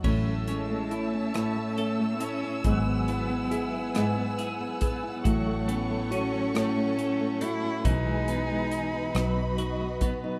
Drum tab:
CC |x-----|------|------|------|
HH |-xxxxx|xxxxxx|xxxxxx|xxxxxx|
SD |-r-r--|---rr-|---r--|---rr-|
BD |o-----|o----o|o-----|o----o|